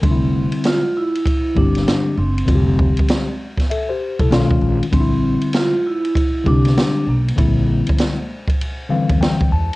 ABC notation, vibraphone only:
X:1
M:4/4
L:1/8
Q:"Swing 16ths" 1/4=98
K:F
V:1 name="Vibraphone"
C2 F E2 D2 C- | C3 z4 z | C2 F E2 D2 B,- | B,3 z4 z |]